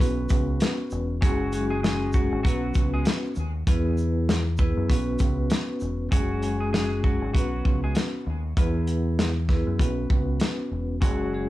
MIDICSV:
0, 0, Header, 1, 5, 480
1, 0, Start_track
1, 0, Tempo, 612245
1, 958, Time_signature, 4, 2, 24, 8
1, 9008, End_track
2, 0, Start_track
2, 0, Title_t, "Vibraphone"
2, 0, Program_c, 0, 11
2, 0, Note_on_c, 0, 59, 89
2, 0, Note_on_c, 0, 61, 91
2, 1, Note_on_c, 0, 66, 82
2, 3, Note_on_c, 0, 71, 101
2, 891, Note_off_c, 0, 59, 0
2, 893, Note_off_c, 0, 61, 0
2, 895, Note_off_c, 0, 66, 0
2, 896, Note_off_c, 0, 71, 0
2, 947, Note_on_c, 0, 56, 92
2, 949, Note_on_c, 0, 61, 96
2, 953, Note_on_c, 0, 66, 94
2, 956, Note_on_c, 0, 68, 115
2, 1176, Note_off_c, 0, 56, 0
2, 1177, Note_off_c, 0, 61, 0
2, 1179, Note_off_c, 0, 66, 0
2, 1181, Note_off_c, 0, 68, 0
2, 1201, Note_on_c, 0, 56, 104
2, 1203, Note_on_c, 0, 61, 90
2, 1207, Note_on_c, 0, 66, 91
2, 1210, Note_on_c, 0, 68, 105
2, 1423, Note_off_c, 0, 56, 0
2, 1424, Note_off_c, 0, 61, 0
2, 1426, Note_off_c, 0, 66, 0
2, 1428, Note_off_c, 0, 68, 0
2, 1446, Note_on_c, 0, 56, 93
2, 1449, Note_on_c, 0, 61, 93
2, 1452, Note_on_c, 0, 66, 88
2, 1456, Note_on_c, 0, 68, 102
2, 1890, Note_off_c, 0, 56, 0
2, 1891, Note_off_c, 0, 61, 0
2, 1893, Note_off_c, 0, 66, 0
2, 1894, Note_off_c, 0, 68, 0
2, 1921, Note_on_c, 0, 59, 94
2, 1923, Note_on_c, 0, 61, 77
2, 1926, Note_on_c, 0, 66, 88
2, 1930, Note_on_c, 0, 71, 101
2, 2591, Note_off_c, 0, 59, 0
2, 2592, Note_off_c, 0, 61, 0
2, 2594, Note_off_c, 0, 66, 0
2, 2596, Note_off_c, 0, 71, 0
2, 2882, Note_on_c, 0, 59, 101
2, 2884, Note_on_c, 0, 64, 92
2, 2888, Note_on_c, 0, 68, 88
2, 2891, Note_on_c, 0, 71, 111
2, 3443, Note_off_c, 0, 59, 0
2, 3445, Note_off_c, 0, 64, 0
2, 3446, Note_off_c, 0, 68, 0
2, 3448, Note_off_c, 0, 71, 0
2, 3595, Note_on_c, 0, 59, 96
2, 3598, Note_on_c, 0, 64, 85
2, 3602, Note_on_c, 0, 68, 84
2, 3604, Note_on_c, 0, 71, 109
2, 3826, Note_off_c, 0, 59, 0
2, 3835, Note_off_c, 0, 71, 0
2, 3835, Note_on_c, 0, 59, 94
2, 3838, Note_off_c, 0, 64, 0
2, 3838, Note_on_c, 0, 61, 92
2, 3840, Note_off_c, 0, 68, 0
2, 3842, Note_on_c, 0, 66, 78
2, 3844, Note_on_c, 0, 71, 101
2, 4732, Note_off_c, 0, 59, 0
2, 4733, Note_off_c, 0, 61, 0
2, 4735, Note_off_c, 0, 66, 0
2, 4736, Note_off_c, 0, 71, 0
2, 4787, Note_on_c, 0, 56, 85
2, 4791, Note_on_c, 0, 61, 89
2, 4794, Note_on_c, 0, 66, 88
2, 4797, Note_on_c, 0, 68, 108
2, 5016, Note_off_c, 0, 56, 0
2, 5018, Note_off_c, 0, 61, 0
2, 5020, Note_off_c, 0, 66, 0
2, 5021, Note_off_c, 0, 68, 0
2, 5042, Note_on_c, 0, 56, 100
2, 5045, Note_on_c, 0, 61, 85
2, 5048, Note_on_c, 0, 66, 82
2, 5052, Note_on_c, 0, 68, 98
2, 5264, Note_off_c, 0, 56, 0
2, 5265, Note_off_c, 0, 61, 0
2, 5267, Note_off_c, 0, 66, 0
2, 5269, Note_off_c, 0, 68, 0
2, 5288, Note_on_c, 0, 56, 93
2, 5291, Note_on_c, 0, 61, 88
2, 5295, Note_on_c, 0, 66, 84
2, 5298, Note_on_c, 0, 68, 102
2, 5731, Note_off_c, 0, 56, 0
2, 5732, Note_off_c, 0, 61, 0
2, 5734, Note_off_c, 0, 66, 0
2, 5736, Note_off_c, 0, 68, 0
2, 5767, Note_on_c, 0, 59, 91
2, 5770, Note_on_c, 0, 61, 73
2, 5773, Note_on_c, 0, 66, 83
2, 5776, Note_on_c, 0, 71, 100
2, 6434, Note_off_c, 0, 59, 0
2, 6435, Note_off_c, 0, 61, 0
2, 6437, Note_off_c, 0, 66, 0
2, 6438, Note_off_c, 0, 71, 0
2, 6726, Note_on_c, 0, 59, 96
2, 6728, Note_on_c, 0, 64, 87
2, 6731, Note_on_c, 0, 68, 84
2, 6734, Note_on_c, 0, 71, 109
2, 7285, Note_off_c, 0, 59, 0
2, 7286, Note_off_c, 0, 64, 0
2, 7288, Note_off_c, 0, 68, 0
2, 7289, Note_off_c, 0, 71, 0
2, 7436, Note_on_c, 0, 59, 90
2, 7440, Note_on_c, 0, 64, 83
2, 7443, Note_on_c, 0, 68, 82
2, 7445, Note_on_c, 0, 71, 106
2, 7669, Note_off_c, 0, 59, 0
2, 7678, Note_off_c, 0, 71, 0
2, 7678, Note_on_c, 0, 59, 90
2, 7679, Note_off_c, 0, 64, 0
2, 7680, Note_off_c, 0, 68, 0
2, 7680, Note_on_c, 0, 61, 87
2, 7685, Note_on_c, 0, 66, 76
2, 7687, Note_on_c, 0, 71, 92
2, 8573, Note_off_c, 0, 59, 0
2, 8574, Note_off_c, 0, 61, 0
2, 8577, Note_off_c, 0, 66, 0
2, 8578, Note_off_c, 0, 71, 0
2, 8627, Note_on_c, 0, 56, 92
2, 8631, Note_on_c, 0, 61, 90
2, 8635, Note_on_c, 0, 66, 89
2, 8638, Note_on_c, 0, 68, 115
2, 8856, Note_off_c, 0, 56, 0
2, 8858, Note_off_c, 0, 61, 0
2, 8860, Note_off_c, 0, 66, 0
2, 8862, Note_off_c, 0, 68, 0
2, 8885, Note_on_c, 0, 56, 98
2, 8888, Note_on_c, 0, 61, 90
2, 8891, Note_on_c, 0, 66, 84
2, 8894, Note_on_c, 0, 68, 102
2, 9008, Note_off_c, 0, 56, 0
2, 9008, Note_off_c, 0, 61, 0
2, 9008, Note_off_c, 0, 66, 0
2, 9008, Note_off_c, 0, 68, 0
2, 9008, End_track
3, 0, Start_track
3, 0, Title_t, "Clean electric guitar"
3, 0, Program_c, 1, 27
3, 961, Note_on_c, 1, 66, 107
3, 967, Note_on_c, 1, 54, 87
3, 1316, Note_off_c, 1, 66, 0
3, 1319, Note_off_c, 1, 54, 0
3, 1336, Note_on_c, 1, 68, 82
3, 1342, Note_on_c, 1, 56, 64
3, 1427, Note_off_c, 1, 68, 0
3, 1430, Note_off_c, 1, 56, 0
3, 1437, Note_on_c, 1, 68, 80
3, 1444, Note_on_c, 1, 56, 62
3, 1653, Note_off_c, 1, 68, 0
3, 1657, Note_off_c, 1, 56, 0
3, 1680, Note_on_c, 1, 66, 83
3, 1687, Note_on_c, 1, 54, 65
3, 1895, Note_off_c, 1, 66, 0
3, 1899, Note_off_c, 1, 54, 0
3, 1907, Note_on_c, 1, 66, 92
3, 1913, Note_on_c, 1, 54, 78
3, 2268, Note_off_c, 1, 66, 0
3, 2271, Note_off_c, 1, 54, 0
3, 2302, Note_on_c, 1, 68, 78
3, 2308, Note_on_c, 1, 56, 59
3, 2390, Note_off_c, 1, 68, 0
3, 2394, Note_off_c, 1, 56, 0
3, 4802, Note_on_c, 1, 66, 113
3, 4809, Note_on_c, 1, 54, 89
3, 5156, Note_off_c, 1, 66, 0
3, 5160, Note_off_c, 1, 54, 0
3, 5177, Note_on_c, 1, 68, 75
3, 5185, Note_on_c, 1, 56, 59
3, 5266, Note_off_c, 1, 68, 0
3, 5272, Note_off_c, 1, 56, 0
3, 5275, Note_on_c, 1, 68, 78
3, 5281, Note_on_c, 1, 56, 59
3, 5492, Note_off_c, 1, 68, 0
3, 5496, Note_off_c, 1, 56, 0
3, 5520, Note_on_c, 1, 66, 69
3, 5526, Note_on_c, 1, 54, 54
3, 5735, Note_off_c, 1, 66, 0
3, 5739, Note_off_c, 1, 54, 0
3, 5751, Note_on_c, 1, 66, 80
3, 5758, Note_on_c, 1, 54, 64
3, 6110, Note_off_c, 1, 66, 0
3, 6114, Note_off_c, 1, 54, 0
3, 6145, Note_on_c, 1, 68, 70
3, 6151, Note_on_c, 1, 56, 54
3, 6232, Note_off_c, 1, 68, 0
3, 6235, Note_off_c, 1, 56, 0
3, 8641, Note_on_c, 1, 66, 107
3, 8647, Note_on_c, 1, 54, 82
3, 8996, Note_off_c, 1, 66, 0
3, 8999, Note_off_c, 1, 54, 0
3, 9008, End_track
4, 0, Start_track
4, 0, Title_t, "Fingered electric bass"
4, 0, Program_c, 2, 33
4, 0, Note_on_c, 2, 35, 112
4, 220, Note_off_c, 2, 35, 0
4, 240, Note_on_c, 2, 37, 91
4, 460, Note_off_c, 2, 37, 0
4, 721, Note_on_c, 2, 28, 97
4, 959, Note_off_c, 2, 28, 0
4, 959, Note_on_c, 2, 30, 108
4, 1786, Note_off_c, 2, 30, 0
4, 1820, Note_on_c, 2, 32, 92
4, 1911, Note_off_c, 2, 32, 0
4, 1920, Note_on_c, 2, 35, 100
4, 2140, Note_off_c, 2, 35, 0
4, 2161, Note_on_c, 2, 37, 95
4, 2380, Note_off_c, 2, 37, 0
4, 2640, Note_on_c, 2, 39, 97
4, 2860, Note_off_c, 2, 39, 0
4, 2879, Note_on_c, 2, 40, 111
4, 3706, Note_off_c, 2, 40, 0
4, 3739, Note_on_c, 2, 42, 87
4, 3831, Note_off_c, 2, 42, 0
4, 3840, Note_on_c, 2, 35, 112
4, 4060, Note_off_c, 2, 35, 0
4, 4079, Note_on_c, 2, 37, 91
4, 4299, Note_off_c, 2, 37, 0
4, 4560, Note_on_c, 2, 28, 97
4, 4779, Note_off_c, 2, 28, 0
4, 4798, Note_on_c, 2, 30, 100
4, 5625, Note_off_c, 2, 30, 0
4, 5659, Note_on_c, 2, 32, 88
4, 5751, Note_off_c, 2, 32, 0
4, 5760, Note_on_c, 2, 35, 98
4, 5980, Note_off_c, 2, 35, 0
4, 6000, Note_on_c, 2, 37, 87
4, 6220, Note_off_c, 2, 37, 0
4, 6480, Note_on_c, 2, 39, 92
4, 6700, Note_off_c, 2, 39, 0
4, 6720, Note_on_c, 2, 40, 109
4, 7546, Note_off_c, 2, 40, 0
4, 7580, Note_on_c, 2, 42, 82
4, 7671, Note_off_c, 2, 42, 0
4, 7680, Note_on_c, 2, 35, 107
4, 7900, Note_off_c, 2, 35, 0
4, 7919, Note_on_c, 2, 37, 87
4, 8139, Note_off_c, 2, 37, 0
4, 8399, Note_on_c, 2, 28, 91
4, 8639, Note_off_c, 2, 28, 0
4, 8639, Note_on_c, 2, 30, 106
4, 9008, Note_off_c, 2, 30, 0
4, 9008, End_track
5, 0, Start_track
5, 0, Title_t, "Drums"
5, 0, Note_on_c, 9, 36, 101
5, 9, Note_on_c, 9, 42, 83
5, 77, Note_off_c, 9, 36, 0
5, 87, Note_off_c, 9, 42, 0
5, 229, Note_on_c, 9, 42, 55
5, 229, Note_on_c, 9, 82, 56
5, 238, Note_on_c, 9, 36, 97
5, 307, Note_off_c, 9, 42, 0
5, 307, Note_off_c, 9, 82, 0
5, 317, Note_off_c, 9, 36, 0
5, 472, Note_on_c, 9, 42, 92
5, 485, Note_on_c, 9, 38, 117
5, 550, Note_off_c, 9, 42, 0
5, 564, Note_off_c, 9, 38, 0
5, 710, Note_on_c, 9, 82, 55
5, 788, Note_off_c, 9, 82, 0
5, 958, Note_on_c, 9, 36, 115
5, 961, Note_on_c, 9, 42, 93
5, 1036, Note_off_c, 9, 36, 0
5, 1039, Note_off_c, 9, 42, 0
5, 1196, Note_on_c, 9, 42, 57
5, 1196, Note_on_c, 9, 82, 58
5, 1274, Note_off_c, 9, 42, 0
5, 1274, Note_off_c, 9, 82, 0
5, 1445, Note_on_c, 9, 38, 123
5, 1450, Note_on_c, 9, 42, 77
5, 1524, Note_off_c, 9, 38, 0
5, 1529, Note_off_c, 9, 42, 0
5, 1668, Note_on_c, 9, 82, 57
5, 1679, Note_on_c, 9, 36, 85
5, 1746, Note_off_c, 9, 82, 0
5, 1757, Note_off_c, 9, 36, 0
5, 1919, Note_on_c, 9, 36, 96
5, 1930, Note_on_c, 9, 42, 86
5, 1998, Note_off_c, 9, 36, 0
5, 2008, Note_off_c, 9, 42, 0
5, 2150, Note_on_c, 9, 42, 55
5, 2150, Note_on_c, 9, 82, 55
5, 2159, Note_on_c, 9, 36, 96
5, 2228, Note_off_c, 9, 42, 0
5, 2228, Note_off_c, 9, 82, 0
5, 2238, Note_off_c, 9, 36, 0
5, 2393, Note_on_c, 9, 42, 89
5, 2406, Note_on_c, 9, 38, 117
5, 2471, Note_off_c, 9, 42, 0
5, 2484, Note_off_c, 9, 38, 0
5, 2629, Note_on_c, 9, 82, 53
5, 2707, Note_off_c, 9, 82, 0
5, 2878, Note_on_c, 9, 36, 120
5, 2879, Note_on_c, 9, 42, 94
5, 2956, Note_off_c, 9, 36, 0
5, 2957, Note_off_c, 9, 42, 0
5, 3116, Note_on_c, 9, 82, 57
5, 3194, Note_off_c, 9, 82, 0
5, 3364, Note_on_c, 9, 38, 124
5, 3369, Note_on_c, 9, 42, 82
5, 3442, Note_off_c, 9, 38, 0
5, 3447, Note_off_c, 9, 42, 0
5, 3586, Note_on_c, 9, 82, 59
5, 3598, Note_on_c, 9, 36, 88
5, 3664, Note_off_c, 9, 82, 0
5, 3676, Note_off_c, 9, 36, 0
5, 3838, Note_on_c, 9, 36, 98
5, 3848, Note_on_c, 9, 42, 83
5, 3917, Note_off_c, 9, 36, 0
5, 3927, Note_off_c, 9, 42, 0
5, 4067, Note_on_c, 9, 42, 53
5, 4067, Note_on_c, 9, 82, 54
5, 4078, Note_on_c, 9, 36, 93
5, 4145, Note_off_c, 9, 42, 0
5, 4145, Note_off_c, 9, 82, 0
5, 4156, Note_off_c, 9, 36, 0
5, 4311, Note_on_c, 9, 42, 93
5, 4325, Note_on_c, 9, 38, 116
5, 4390, Note_off_c, 9, 42, 0
5, 4403, Note_off_c, 9, 38, 0
5, 4548, Note_on_c, 9, 82, 55
5, 4626, Note_off_c, 9, 82, 0
5, 4797, Note_on_c, 9, 36, 110
5, 4797, Note_on_c, 9, 42, 88
5, 4875, Note_off_c, 9, 36, 0
5, 4876, Note_off_c, 9, 42, 0
5, 5036, Note_on_c, 9, 42, 57
5, 5114, Note_off_c, 9, 42, 0
5, 5285, Note_on_c, 9, 38, 116
5, 5290, Note_on_c, 9, 42, 78
5, 5363, Note_off_c, 9, 38, 0
5, 5368, Note_off_c, 9, 42, 0
5, 5519, Note_on_c, 9, 36, 84
5, 5597, Note_off_c, 9, 36, 0
5, 5759, Note_on_c, 9, 36, 93
5, 5769, Note_on_c, 9, 42, 83
5, 5838, Note_off_c, 9, 36, 0
5, 5848, Note_off_c, 9, 42, 0
5, 5999, Note_on_c, 9, 36, 91
5, 6078, Note_off_c, 9, 36, 0
5, 6232, Note_on_c, 9, 42, 90
5, 6246, Note_on_c, 9, 38, 112
5, 6311, Note_off_c, 9, 42, 0
5, 6324, Note_off_c, 9, 38, 0
5, 6718, Note_on_c, 9, 36, 111
5, 6720, Note_on_c, 9, 42, 91
5, 6797, Note_off_c, 9, 36, 0
5, 6798, Note_off_c, 9, 42, 0
5, 6956, Note_on_c, 9, 42, 56
5, 7035, Note_off_c, 9, 42, 0
5, 7204, Note_on_c, 9, 38, 118
5, 7210, Note_on_c, 9, 42, 78
5, 7283, Note_off_c, 9, 38, 0
5, 7288, Note_off_c, 9, 42, 0
5, 7437, Note_on_c, 9, 38, 35
5, 7439, Note_on_c, 9, 36, 82
5, 7516, Note_off_c, 9, 38, 0
5, 7517, Note_off_c, 9, 36, 0
5, 7679, Note_on_c, 9, 36, 94
5, 7689, Note_on_c, 9, 42, 83
5, 7757, Note_off_c, 9, 36, 0
5, 7767, Note_off_c, 9, 42, 0
5, 7919, Note_on_c, 9, 36, 93
5, 7997, Note_off_c, 9, 36, 0
5, 8151, Note_on_c, 9, 42, 86
5, 8165, Note_on_c, 9, 38, 113
5, 8230, Note_off_c, 9, 42, 0
5, 8243, Note_off_c, 9, 38, 0
5, 8638, Note_on_c, 9, 36, 112
5, 8640, Note_on_c, 9, 42, 88
5, 8716, Note_off_c, 9, 36, 0
5, 8718, Note_off_c, 9, 42, 0
5, 9008, End_track
0, 0, End_of_file